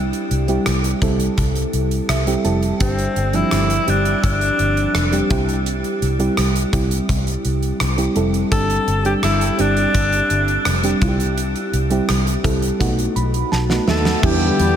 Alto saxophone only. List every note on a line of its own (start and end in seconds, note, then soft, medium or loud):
2.81 3.36 C4 medium
3.35 3.91 E4 loud
3.89 4.24 D4 medium
4.25 5.27 D4 medium
8.52 9.02 A4 loud
9.06 9.14 G4 medium
9.24 9.62 E4 medium
9.60 11.03 D4 loud
13.90 14.27 A4 medium
14.25 14.76 G4 loud